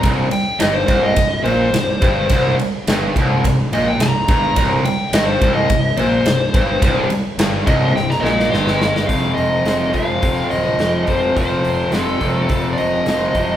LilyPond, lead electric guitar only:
\new Staff \with { instrumentName = "Lead electric guitar" } { \time 4/4 \key f \major \tempo 4 = 106 << { bes''8 g''8 ees''16 c''8 ees''8. c''4.~ | c''8 r2 ees''16 g''16 bes''4~ | bes''8 g''8 ees''16 c''8 ees''8. c''4.~ | c''8 r4 ees''8 g''16 bes''16 c'''8 c'''4 |
r1 | r1 | } \\ { r1 | r1 | r1 | r2 r8 ees''4. |
f''8 ees''4 f''4 ees''4 c''8 | c''4 a'4~ a'16. d''32 ees''4. | } >> }